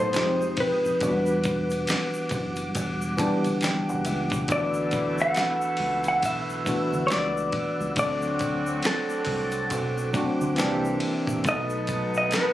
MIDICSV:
0, 0, Header, 1, 7, 480
1, 0, Start_track
1, 0, Key_signature, 2, "major"
1, 0, Tempo, 869565
1, 558, Time_signature, 4, 2, 24, 8
1, 6917, End_track
2, 0, Start_track
2, 0, Title_t, "Tonewheel organ"
2, 0, Program_c, 0, 16
2, 0, Note_on_c, 0, 71, 70
2, 0, Note_on_c, 0, 81, 63
2, 0, Note_on_c, 0, 87, 72
2, 63, Note_off_c, 0, 81, 0
2, 64, Note_off_c, 0, 71, 0
2, 78, Note_on_c, 0, 56, 69
2, 78, Note_on_c, 0, 79, 58
2, 540, Note_off_c, 0, 87, 0
2, 553, Note_off_c, 0, 56, 0
2, 553, Note_off_c, 0, 79, 0
2, 557, Note_on_c, 0, 78, 58
2, 557, Note_on_c, 0, 86, 72
2, 558, Note_on_c, 0, 55, 70
2, 2459, Note_off_c, 0, 55, 0
2, 2459, Note_off_c, 0, 86, 0
2, 2480, Note_on_c, 0, 71, 65
2, 2480, Note_on_c, 0, 88, 72
2, 4380, Note_off_c, 0, 71, 0
2, 4380, Note_off_c, 0, 88, 0
2, 4395, Note_on_c, 0, 86, 72
2, 5816, Note_off_c, 0, 78, 0
2, 5837, Note_on_c, 0, 76, 62
2, 5838, Note_on_c, 0, 70, 72
2, 6297, Note_off_c, 0, 86, 0
2, 6313, Note_off_c, 0, 70, 0
2, 6313, Note_off_c, 0, 76, 0
2, 6319, Note_on_c, 0, 71, 68
2, 6319, Note_on_c, 0, 87, 74
2, 6320, Note_on_c, 0, 81, 65
2, 6917, Note_off_c, 0, 71, 0
2, 6917, Note_off_c, 0, 81, 0
2, 6917, Note_off_c, 0, 87, 0
2, 6917, End_track
3, 0, Start_track
3, 0, Title_t, "Clean electric guitar"
3, 0, Program_c, 1, 27
3, 0, Note_on_c, 1, 72, 97
3, 303, Note_off_c, 1, 72, 0
3, 333, Note_on_c, 1, 71, 85
3, 1744, Note_off_c, 1, 71, 0
3, 2495, Note_on_c, 1, 74, 101
3, 2850, Note_off_c, 1, 74, 0
3, 2879, Note_on_c, 1, 78, 106
3, 3351, Note_off_c, 1, 78, 0
3, 3358, Note_on_c, 1, 78, 94
3, 3448, Note_off_c, 1, 78, 0
3, 3453, Note_on_c, 1, 76, 102
3, 3900, Note_off_c, 1, 76, 0
3, 3902, Note_on_c, 1, 73, 81
3, 3925, Note_off_c, 1, 73, 0
3, 3932, Note_on_c, 1, 74, 92
3, 4383, Note_off_c, 1, 74, 0
3, 4413, Note_on_c, 1, 74, 102
3, 4894, Note_on_c, 1, 69, 88
3, 4900, Note_off_c, 1, 74, 0
3, 5584, Note_off_c, 1, 69, 0
3, 6340, Note_on_c, 1, 75, 123
3, 6693, Note_off_c, 1, 75, 0
3, 6721, Note_on_c, 1, 75, 97
3, 6809, Note_off_c, 1, 75, 0
3, 6812, Note_on_c, 1, 71, 101
3, 6917, Note_off_c, 1, 71, 0
3, 6917, End_track
4, 0, Start_track
4, 0, Title_t, "Tine electric piano"
4, 0, Program_c, 2, 4
4, 0, Control_c, 2, 64, 127
4, 0, Note_on_c, 2, 54, 74
4, 0, Note_on_c, 2, 57, 67
4, 0, Note_on_c, 2, 59, 71
4, 0, Note_on_c, 2, 63, 66
4, 0, Note_on_c, 2, 69, 81
4, 71, Note_on_c, 2, 53, 77
4, 76, Note_off_c, 2, 54, 0
4, 77, Note_on_c, 2, 55, 58
4, 78, Note_off_c, 2, 57, 0
4, 81, Note_off_c, 2, 59, 0
4, 82, Note_off_c, 2, 63, 0
4, 83, Note_on_c, 2, 60, 73
4, 85, Control_c, 2, 64, 0
4, 86, Note_off_c, 2, 69, 0
4, 88, Note_on_c, 2, 63, 74
4, 93, Note_on_c, 2, 67, 84
4, 113, Note_on_c, 2, 56, 74
4, 121, Note_off_c, 2, 55, 0
4, 184, Control_c, 2, 64, 127
4, 531, Note_off_c, 2, 53, 0
4, 536, Note_off_c, 2, 60, 0
4, 539, Note_off_c, 2, 63, 0
4, 542, Note_off_c, 2, 67, 0
4, 552, Note_off_c, 2, 56, 0
4, 552, Note_on_c, 2, 52, 74
4, 557, Note_on_c, 2, 54, 53
4, 563, Note_on_c, 2, 59, 70
4, 565, Control_c, 2, 64, 0
4, 567, Note_on_c, 2, 62, 68
4, 573, Note_on_c, 2, 66, 77
4, 593, Note_on_c, 2, 55, 70
4, 601, Note_off_c, 2, 54, 0
4, 665, Control_c, 2, 64, 127
4, 1467, Note_off_c, 2, 52, 0
4, 1473, Note_off_c, 2, 59, 0
4, 1475, Note_off_c, 2, 62, 0
4, 1478, Note_off_c, 2, 66, 0
4, 1488, Note_off_c, 2, 55, 0
4, 1751, Note_on_c, 2, 52, 86
4, 1756, Note_on_c, 2, 55, 75
4, 1762, Note_on_c, 2, 59, 79
4, 1762, Note_on_c, 2, 81, 69
4, 1767, Note_on_c, 2, 62, 82
4, 1772, Note_on_c, 2, 67, 96
4, 1984, Note_off_c, 2, 81, 0
4, 2003, Note_on_c, 2, 79, 70
4, 2136, Note_off_c, 2, 79, 0
4, 2148, Note_on_c, 2, 78, 66
4, 2234, Note_off_c, 2, 78, 0
4, 2242, Note_on_c, 2, 76, 71
4, 2439, Note_off_c, 2, 52, 0
4, 2441, Note_off_c, 2, 55, 0
4, 2444, Note_off_c, 2, 59, 0
4, 2447, Note_off_c, 2, 62, 0
4, 2449, Note_off_c, 2, 67, 0
4, 2464, Note_off_c, 2, 76, 0
4, 2471, Note_on_c, 2, 52, 69
4, 2475, Note_on_c, 2, 57, 69
4, 2481, Note_on_c, 2, 59, 65
4, 2487, Control_c, 2, 64, 0
4, 2487, Note_on_c, 2, 62, 68
4, 2492, Note_on_c, 2, 66, 75
4, 2573, Control_c, 2, 64, 127
4, 3387, Note_off_c, 2, 52, 0
4, 3389, Note_off_c, 2, 57, 0
4, 3392, Note_off_c, 2, 59, 0
4, 3395, Note_off_c, 2, 62, 0
4, 3397, Note_off_c, 2, 66, 0
4, 3671, Note_on_c, 2, 52, 72
4, 3676, Note_on_c, 2, 57, 66
4, 3681, Note_on_c, 2, 59, 68
4, 3686, Note_on_c, 2, 62, 65
4, 3691, Note_on_c, 2, 66, 81
4, 4359, Note_off_c, 2, 52, 0
4, 4361, Note_off_c, 2, 57, 0
4, 4364, Note_off_c, 2, 59, 0
4, 4366, Note_off_c, 2, 62, 0
4, 4369, Note_off_c, 2, 66, 0
4, 4391, Note_on_c, 2, 54, 72
4, 4396, Note_on_c, 2, 57, 66
4, 4401, Note_on_c, 2, 60, 70
4, 4405, Note_on_c, 2, 62, 70
4, 4407, Control_c, 2, 64, 0
4, 4412, Note_on_c, 2, 69, 81
4, 4513, Control_c, 2, 64, 127
4, 5307, Note_off_c, 2, 54, 0
4, 5309, Note_off_c, 2, 57, 0
4, 5312, Note_off_c, 2, 60, 0
4, 5314, Note_off_c, 2, 62, 0
4, 5317, Note_off_c, 2, 69, 0
4, 5590, Note_on_c, 2, 54, 93
4, 5596, Note_on_c, 2, 57, 81
4, 5601, Note_on_c, 2, 60, 82
4, 5606, Note_on_c, 2, 62, 82
4, 5612, Note_on_c, 2, 66, 96
4, 5828, Note_on_c, 2, 52, 99
4, 5833, Note_off_c, 2, 60, 0
4, 5834, Note_off_c, 2, 54, 0
4, 5835, Note_on_c, 2, 58, 92
4, 5837, Note_off_c, 2, 57, 0
4, 5839, Note_off_c, 2, 62, 0
4, 5840, Note_on_c, 2, 60, 92
4, 5845, Note_off_c, 2, 66, 0
4, 5846, Note_on_c, 2, 62, 90
4, 5847, Control_c, 2, 64, 0
4, 5851, Note_on_c, 2, 67, 101
4, 5936, Control_c, 2, 64, 127
4, 6289, Note_off_c, 2, 52, 0
4, 6293, Note_off_c, 2, 58, 0
4, 6295, Note_off_c, 2, 60, 0
4, 6298, Note_off_c, 2, 62, 0
4, 6301, Note_off_c, 2, 67, 0
4, 6312, Note_on_c, 2, 54, 76
4, 6318, Note_on_c, 2, 57, 70
4, 6322, Note_on_c, 2, 59, 70
4, 6325, Control_c, 2, 64, 0
4, 6328, Note_on_c, 2, 63, 72
4, 6333, Note_on_c, 2, 69, 83
4, 6407, Control_c, 2, 64, 127
4, 6917, Note_off_c, 2, 54, 0
4, 6917, Note_off_c, 2, 57, 0
4, 6917, Note_off_c, 2, 59, 0
4, 6917, Note_off_c, 2, 63, 0
4, 6917, Note_off_c, 2, 69, 0
4, 6917, End_track
5, 0, Start_track
5, 0, Title_t, "Horn section"
5, 0, Program_c, 3, 61
5, 2475, Note_on_c, 3, 47, 75
5, 2475, Note_on_c, 3, 57, 74
5, 2476, Note_on_c, 3, 52, 74
5, 2476, Note_on_c, 3, 64, 81
5, 4135, Note_off_c, 3, 47, 0
5, 4135, Note_off_c, 3, 52, 0
5, 4135, Note_off_c, 3, 57, 0
5, 4135, Note_off_c, 3, 64, 0
5, 4395, Note_on_c, 3, 50, 73
5, 4396, Note_on_c, 3, 54, 80
5, 4396, Note_on_c, 3, 60, 69
5, 4396, Note_on_c, 3, 66, 86
5, 5575, Note_off_c, 3, 50, 0
5, 5575, Note_off_c, 3, 54, 0
5, 5575, Note_off_c, 3, 60, 0
5, 5575, Note_off_c, 3, 66, 0
5, 5838, Note_on_c, 3, 52, 71
5, 5838, Note_on_c, 3, 55, 71
5, 5838, Note_on_c, 3, 62, 67
5, 5838, Note_on_c, 3, 67, 77
5, 6073, Note_off_c, 3, 52, 0
5, 6073, Note_off_c, 3, 55, 0
5, 6073, Note_off_c, 3, 62, 0
5, 6073, Note_off_c, 3, 67, 0
5, 6316, Note_on_c, 3, 54, 78
5, 6316, Note_on_c, 3, 59, 79
5, 6316, Note_on_c, 3, 63, 76
5, 6316, Note_on_c, 3, 71, 86
5, 6917, Note_off_c, 3, 54, 0
5, 6917, Note_off_c, 3, 59, 0
5, 6917, Note_off_c, 3, 63, 0
5, 6917, Note_off_c, 3, 71, 0
5, 6917, End_track
6, 0, Start_track
6, 0, Title_t, "Fingered electric bass"
6, 0, Program_c, 4, 33
6, 0, Note_on_c, 4, 33, 92
6, 73, Note_off_c, 4, 33, 0
6, 84, Note_on_c, 4, 29, 110
6, 299, Note_off_c, 4, 29, 0
6, 471, Note_on_c, 4, 29, 87
6, 553, Note_off_c, 4, 29, 0
6, 562, Note_on_c, 4, 28, 120
6, 1018, Note_off_c, 4, 28, 0
6, 1277, Note_on_c, 4, 30, 93
6, 1496, Note_off_c, 4, 30, 0
6, 1522, Note_on_c, 4, 28, 107
6, 1738, Note_off_c, 4, 28, 0
6, 1910, Note_on_c, 4, 31, 85
6, 2125, Note_off_c, 4, 31, 0
6, 2147, Note_on_c, 4, 30, 93
6, 2231, Note_off_c, 4, 30, 0
6, 2241, Note_on_c, 4, 37, 99
6, 2480, Note_off_c, 4, 37, 0
6, 2480, Note_on_c, 4, 38, 109
6, 2937, Note_off_c, 4, 38, 0
6, 3200, Note_on_c, 4, 37, 93
6, 3441, Note_off_c, 4, 37, 0
6, 3441, Note_on_c, 4, 35, 103
6, 3658, Note_off_c, 4, 35, 0
6, 3827, Note_on_c, 4, 38, 89
6, 3911, Note_off_c, 4, 38, 0
6, 3922, Note_on_c, 4, 37, 106
6, 4138, Note_off_c, 4, 37, 0
6, 4308, Note_on_c, 4, 37, 91
6, 4391, Note_off_c, 4, 37, 0
6, 4400, Note_on_c, 4, 38, 107
6, 4857, Note_off_c, 4, 38, 0
6, 5117, Note_on_c, 4, 36, 90
6, 5335, Note_off_c, 4, 36, 0
6, 5362, Note_on_c, 4, 35, 108
6, 5578, Note_off_c, 4, 35, 0
6, 5748, Note_on_c, 4, 38, 92
6, 5832, Note_off_c, 4, 38, 0
6, 5844, Note_on_c, 4, 36, 103
6, 6059, Note_off_c, 4, 36, 0
6, 6226, Note_on_c, 4, 33, 89
6, 6310, Note_off_c, 4, 33, 0
6, 6320, Note_on_c, 4, 35, 116
6, 6777, Note_off_c, 4, 35, 0
6, 6917, End_track
7, 0, Start_track
7, 0, Title_t, "Drums"
7, 72, Note_on_c, 9, 51, 55
7, 79, Note_on_c, 9, 26, 66
7, 79, Note_on_c, 9, 82, 62
7, 91, Note_on_c, 9, 38, 104
7, 127, Note_off_c, 9, 51, 0
7, 134, Note_off_c, 9, 26, 0
7, 134, Note_off_c, 9, 82, 0
7, 146, Note_off_c, 9, 38, 0
7, 229, Note_on_c, 9, 82, 50
7, 284, Note_off_c, 9, 82, 0
7, 313, Note_on_c, 9, 51, 69
7, 318, Note_on_c, 9, 36, 89
7, 368, Note_off_c, 9, 51, 0
7, 373, Note_off_c, 9, 36, 0
7, 470, Note_on_c, 9, 82, 47
7, 525, Note_off_c, 9, 82, 0
7, 555, Note_on_c, 9, 51, 73
7, 559, Note_on_c, 9, 36, 112
7, 565, Note_on_c, 9, 82, 67
7, 610, Note_off_c, 9, 51, 0
7, 615, Note_off_c, 9, 36, 0
7, 620, Note_off_c, 9, 82, 0
7, 697, Note_on_c, 9, 82, 48
7, 752, Note_off_c, 9, 82, 0
7, 793, Note_on_c, 9, 51, 58
7, 795, Note_on_c, 9, 82, 48
7, 802, Note_on_c, 9, 36, 103
7, 848, Note_off_c, 9, 51, 0
7, 850, Note_off_c, 9, 82, 0
7, 858, Note_off_c, 9, 36, 0
7, 939, Note_on_c, 9, 82, 55
7, 947, Note_on_c, 9, 51, 34
7, 995, Note_off_c, 9, 82, 0
7, 1002, Note_off_c, 9, 51, 0
7, 1034, Note_on_c, 9, 51, 73
7, 1041, Note_on_c, 9, 26, 65
7, 1041, Note_on_c, 9, 82, 68
7, 1049, Note_on_c, 9, 38, 118
7, 1089, Note_off_c, 9, 51, 0
7, 1096, Note_off_c, 9, 26, 0
7, 1096, Note_off_c, 9, 82, 0
7, 1104, Note_off_c, 9, 38, 0
7, 1179, Note_on_c, 9, 82, 47
7, 1234, Note_off_c, 9, 82, 0
7, 1266, Note_on_c, 9, 51, 48
7, 1276, Note_on_c, 9, 36, 81
7, 1276, Note_on_c, 9, 82, 52
7, 1321, Note_off_c, 9, 51, 0
7, 1331, Note_off_c, 9, 36, 0
7, 1331, Note_off_c, 9, 82, 0
7, 1413, Note_on_c, 9, 82, 47
7, 1417, Note_on_c, 9, 51, 36
7, 1468, Note_off_c, 9, 82, 0
7, 1472, Note_off_c, 9, 51, 0
7, 1516, Note_on_c, 9, 51, 71
7, 1520, Note_on_c, 9, 36, 84
7, 1522, Note_on_c, 9, 82, 70
7, 1571, Note_off_c, 9, 51, 0
7, 1575, Note_off_c, 9, 36, 0
7, 1578, Note_off_c, 9, 82, 0
7, 1665, Note_on_c, 9, 82, 45
7, 1720, Note_off_c, 9, 82, 0
7, 1755, Note_on_c, 9, 82, 45
7, 1758, Note_on_c, 9, 36, 97
7, 1763, Note_on_c, 9, 51, 59
7, 1811, Note_off_c, 9, 82, 0
7, 1813, Note_off_c, 9, 36, 0
7, 1819, Note_off_c, 9, 51, 0
7, 1901, Note_on_c, 9, 51, 35
7, 1905, Note_on_c, 9, 82, 46
7, 1957, Note_off_c, 9, 51, 0
7, 1961, Note_off_c, 9, 82, 0
7, 1991, Note_on_c, 9, 51, 53
7, 2001, Note_on_c, 9, 26, 62
7, 2001, Note_on_c, 9, 82, 61
7, 2010, Note_on_c, 9, 38, 108
7, 2047, Note_off_c, 9, 51, 0
7, 2056, Note_off_c, 9, 26, 0
7, 2056, Note_off_c, 9, 82, 0
7, 2065, Note_off_c, 9, 38, 0
7, 2148, Note_on_c, 9, 82, 49
7, 2203, Note_off_c, 9, 82, 0
7, 2234, Note_on_c, 9, 51, 66
7, 2239, Note_on_c, 9, 82, 44
7, 2289, Note_off_c, 9, 51, 0
7, 2295, Note_off_c, 9, 82, 0
7, 2374, Note_on_c, 9, 51, 33
7, 2383, Note_on_c, 9, 36, 91
7, 2388, Note_on_c, 9, 82, 49
7, 2429, Note_off_c, 9, 51, 0
7, 2439, Note_off_c, 9, 36, 0
7, 2443, Note_off_c, 9, 82, 0
7, 2473, Note_on_c, 9, 51, 72
7, 2478, Note_on_c, 9, 36, 111
7, 2485, Note_on_c, 9, 82, 68
7, 2528, Note_off_c, 9, 51, 0
7, 2533, Note_off_c, 9, 36, 0
7, 2541, Note_off_c, 9, 82, 0
7, 2616, Note_on_c, 9, 82, 46
7, 2671, Note_off_c, 9, 82, 0
7, 2712, Note_on_c, 9, 51, 55
7, 2714, Note_on_c, 9, 82, 47
7, 2721, Note_on_c, 9, 36, 107
7, 2767, Note_off_c, 9, 51, 0
7, 2769, Note_off_c, 9, 82, 0
7, 2776, Note_off_c, 9, 36, 0
7, 2861, Note_on_c, 9, 82, 53
7, 2916, Note_off_c, 9, 82, 0
7, 2950, Note_on_c, 9, 51, 70
7, 2959, Note_on_c, 9, 26, 67
7, 2959, Note_on_c, 9, 82, 65
7, 2965, Note_on_c, 9, 38, 121
7, 3006, Note_off_c, 9, 51, 0
7, 3014, Note_off_c, 9, 26, 0
7, 3014, Note_off_c, 9, 82, 0
7, 3021, Note_off_c, 9, 38, 0
7, 3100, Note_on_c, 9, 82, 48
7, 3155, Note_off_c, 9, 82, 0
7, 3184, Note_on_c, 9, 46, 42
7, 3184, Note_on_c, 9, 51, 51
7, 3239, Note_off_c, 9, 46, 0
7, 3239, Note_off_c, 9, 51, 0
7, 3332, Note_on_c, 9, 82, 46
7, 3335, Note_on_c, 9, 51, 36
7, 3387, Note_off_c, 9, 82, 0
7, 3390, Note_off_c, 9, 51, 0
7, 3436, Note_on_c, 9, 51, 70
7, 3439, Note_on_c, 9, 36, 85
7, 3442, Note_on_c, 9, 82, 69
7, 3491, Note_off_c, 9, 51, 0
7, 3494, Note_off_c, 9, 36, 0
7, 3497, Note_off_c, 9, 82, 0
7, 3586, Note_on_c, 9, 82, 47
7, 3641, Note_off_c, 9, 82, 0
7, 3677, Note_on_c, 9, 82, 48
7, 3678, Note_on_c, 9, 36, 101
7, 3683, Note_on_c, 9, 51, 57
7, 3732, Note_off_c, 9, 82, 0
7, 3733, Note_off_c, 9, 36, 0
7, 3738, Note_off_c, 9, 51, 0
7, 3826, Note_on_c, 9, 82, 47
7, 3881, Note_off_c, 9, 82, 0
7, 3910, Note_on_c, 9, 51, 53
7, 3922, Note_on_c, 9, 26, 62
7, 3922, Note_on_c, 9, 82, 65
7, 3928, Note_on_c, 9, 38, 112
7, 3965, Note_off_c, 9, 51, 0
7, 3977, Note_off_c, 9, 26, 0
7, 3977, Note_off_c, 9, 82, 0
7, 3983, Note_off_c, 9, 38, 0
7, 4070, Note_on_c, 9, 82, 49
7, 4125, Note_off_c, 9, 82, 0
7, 4153, Note_on_c, 9, 51, 66
7, 4156, Note_on_c, 9, 36, 95
7, 4209, Note_off_c, 9, 51, 0
7, 4212, Note_off_c, 9, 36, 0
7, 4310, Note_on_c, 9, 82, 47
7, 4366, Note_off_c, 9, 82, 0
7, 4393, Note_on_c, 9, 51, 69
7, 4398, Note_on_c, 9, 36, 117
7, 4406, Note_on_c, 9, 82, 68
7, 4448, Note_off_c, 9, 51, 0
7, 4453, Note_off_c, 9, 36, 0
7, 4461, Note_off_c, 9, 82, 0
7, 4538, Note_on_c, 9, 82, 44
7, 4593, Note_off_c, 9, 82, 0
7, 4632, Note_on_c, 9, 51, 64
7, 4637, Note_on_c, 9, 82, 46
7, 4641, Note_on_c, 9, 36, 103
7, 4688, Note_off_c, 9, 51, 0
7, 4693, Note_off_c, 9, 82, 0
7, 4696, Note_off_c, 9, 36, 0
7, 4783, Note_on_c, 9, 82, 53
7, 4838, Note_off_c, 9, 82, 0
7, 4872, Note_on_c, 9, 51, 68
7, 4881, Note_on_c, 9, 26, 65
7, 4881, Note_on_c, 9, 82, 68
7, 4887, Note_on_c, 9, 38, 126
7, 4927, Note_off_c, 9, 51, 0
7, 4936, Note_off_c, 9, 26, 0
7, 4936, Note_off_c, 9, 82, 0
7, 4942, Note_off_c, 9, 38, 0
7, 5021, Note_on_c, 9, 82, 44
7, 5076, Note_off_c, 9, 82, 0
7, 5104, Note_on_c, 9, 46, 47
7, 5104, Note_on_c, 9, 51, 50
7, 5115, Note_on_c, 9, 36, 84
7, 5159, Note_off_c, 9, 46, 0
7, 5159, Note_off_c, 9, 51, 0
7, 5170, Note_off_c, 9, 36, 0
7, 5253, Note_on_c, 9, 82, 48
7, 5255, Note_on_c, 9, 51, 35
7, 5308, Note_off_c, 9, 82, 0
7, 5310, Note_off_c, 9, 51, 0
7, 5356, Note_on_c, 9, 51, 74
7, 5359, Note_on_c, 9, 36, 85
7, 5363, Note_on_c, 9, 82, 75
7, 5411, Note_off_c, 9, 51, 0
7, 5415, Note_off_c, 9, 36, 0
7, 5418, Note_off_c, 9, 82, 0
7, 5507, Note_on_c, 9, 82, 47
7, 5563, Note_off_c, 9, 82, 0
7, 5596, Note_on_c, 9, 82, 46
7, 5598, Note_on_c, 9, 36, 99
7, 5602, Note_on_c, 9, 51, 60
7, 5651, Note_off_c, 9, 82, 0
7, 5653, Note_off_c, 9, 36, 0
7, 5657, Note_off_c, 9, 51, 0
7, 5747, Note_on_c, 9, 82, 47
7, 5802, Note_off_c, 9, 82, 0
7, 5830, Note_on_c, 9, 51, 55
7, 5842, Note_on_c, 9, 26, 62
7, 5842, Note_on_c, 9, 82, 61
7, 5848, Note_on_c, 9, 38, 112
7, 5885, Note_off_c, 9, 51, 0
7, 5897, Note_off_c, 9, 26, 0
7, 5897, Note_off_c, 9, 82, 0
7, 5904, Note_off_c, 9, 38, 0
7, 5989, Note_on_c, 9, 82, 49
7, 6044, Note_off_c, 9, 82, 0
7, 6073, Note_on_c, 9, 51, 69
7, 6128, Note_off_c, 9, 51, 0
7, 6223, Note_on_c, 9, 36, 96
7, 6230, Note_on_c, 9, 82, 48
7, 6279, Note_off_c, 9, 36, 0
7, 6285, Note_off_c, 9, 82, 0
7, 6315, Note_on_c, 9, 51, 69
7, 6319, Note_on_c, 9, 36, 113
7, 6327, Note_on_c, 9, 82, 67
7, 6370, Note_off_c, 9, 51, 0
7, 6374, Note_off_c, 9, 36, 0
7, 6382, Note_off_c, 9, 82, 0
7, 6458, Note_on_c, 9, 82, 47
7, 6513, Note_off_c, 9, 82, 0
7, 6554, Note_on_c, 9, 51, 60
7, 6556, Note_on_c, 9, 82, 47
7, 6562, Note_on_c, 9, 36, 103
7, 6609, Note_off_c, 9, 51, 0
7, 6611, Note_off_c, 9, 82, 0
7, 6617, Note_off_c, 9, 36, 0
7, 6702, Note_on_c, 9, 82, 54
7, 6758, Note_off_c, 9, 82, 0
7, 6794, Note_on_c, 9, 51, 69
7, 6802, Note_on_c, 9, 26, 71
7, 6802, Note_on_c, 9, 82, 72
7, 6809, Note_on_c, 9, 38, 124
7, 6849, Note_off_c, 9, 51, 0
7, 6858, Note_off_c, 9, 26, 0
7, 6858, Note_off_c, 9, 82, 0
7, 6864, Note_off_c, 9, 38, 0
7, 6917, End_track
0, 0, End_of_file